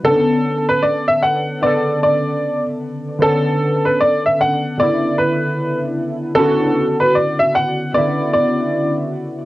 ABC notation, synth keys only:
X:1
M:4/4
L:1/8
Q:"Swing 16ths" 1/4=76
K:Bm
V:1 name="Synth keys"
[C,D,B,CA]4 [C,D,B,A]4 | [D,B,CA]4 [C,D,B,E]4 | [C,D,B,CF]4 [C,D,B,E]4 |]